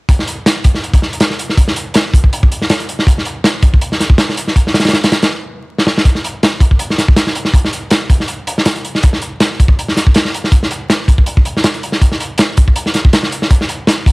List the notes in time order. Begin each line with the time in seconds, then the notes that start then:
0.09 kick, closed hi-hat
0.19 snare
0.27 closed hi-hat
0.46 snare, closed hi-hat
0.64 kick, closed hi-hat
0.75 snare
0.84 closed hi-hat
0.94 kick, closed hi-hat
1.02 snare
1.13 closed hi-hat
1.20 snare, closed hi-hat
1.30 snare
1.39 closed hi-hat
1.49 snare
1.57 kick, closed hi-hat
1.68 snare
1.76 closed hi-hat
1.94 snare, closed hi-hat
2.14 kick, closed hi-hat
2.24 kick
2.33 closed hi-hat
2.43 kick
2.52 closed hi-hat
2.62 snare
2.70 snare, closed hi-hat
2.80 closed hi-hat
2.89 closed hi-hat
2.99 snare
3.07 kick, closed hi-hat
3.18 snare
3.25 closed hi-hat
3.44 snare, closed hi-hat
3.62 kick, closed hi-hat
3.74 kick
3.81 closed hi-hat
3.92 snare
4.00 snare, closed hi-hat
4.10 kick
4.18 snare, closed hi-hat
4.29 snare
4.37 closed hi-hat
4.48 snare
4.56 kick, closed hi-hat
4.67 snare
4.74 snare, closed hi-hat
4.80 snare, closed hi-hat
4.85 snare, closed hi-hat
4.88 snare, closed hi-hat
4.93 snare, closed hi-hat
5.04 snare, closed hi-hat
5.12 snare, closed hi-hat
5.22 snare, closed hi-hat
5.78 snare
5.87 snare
5.98 snare
6.05 kick, closed hi-hat
6.15 snare
6.24 closed hi-hat
6.43 snare, closed hi-hat
6.60 kick, closed hi-hat
6.71 kick
6.79 closed hi-hat
6.90 snare
6.98 snare, closed hi-hat
7.08 kick
7.16 snare, closed hi-hat
7.27 snare
7.35 closed hi-hat
7.45 snare
7.54 kick, closed hi-hat
7.65 snare
7.73 closed hi-hat
7.90 snare, closed hi-hat
8.10 kick, closed hi-hat
8.20 snare
8.28 closed hi-hat
8.47 closed hi-hat
8.58 snare
8.65 snare, closed hi-hat
8.76 closed hi-hat
8.85 closed hi-hat
8.95 snare
9.03 kick, closed hi-hat
9.13 snare
9.22 closed hi-hat
9.40 snare, closed hi-hat
9.60 kick, closed hi-hat
9.68 kick
9.79 closed hi-hat
9.88 snare
9.97 snare, closed hi-hat
10.07 kick
10.14 snare, closed hi-hat
10.25 snare
10.34 closed hi-hat
10.44 snare
10.52 kick, closed hi-hat
10.63 snare
10.71 closed hi-hat
10.90 snare, closed hi-hat
11.08 kick, closed hi-hat
11.18 kick
11.26 closed hi-hat
11.37 kick
11.45 closed hi-hat
11.57 snare
11.64 snare, closed hi-hat
11.74 closed hi-hat
11.83 closed hi-hat
11.92 snare
12.02 kick, closed hi-hat
12.12 snare
12.20 closed hi-hat
12.38 snare, closed hi-hat
12.57 kick, closed hi-hat
12.68 kick
12.76 closed hi-hat
12.86 snare
12.94 snare, closed hi-hat
13.05 kick
13.13 snare, closed hi-hat
13.23 snare
13.32 closed hi-hat
13.42 snare
13.51 kick, closed hi-hat
13.61 snare
13.69 closed hi-hat
13.87 snare, closed hi-hat
14.06 kick, closed hi-hat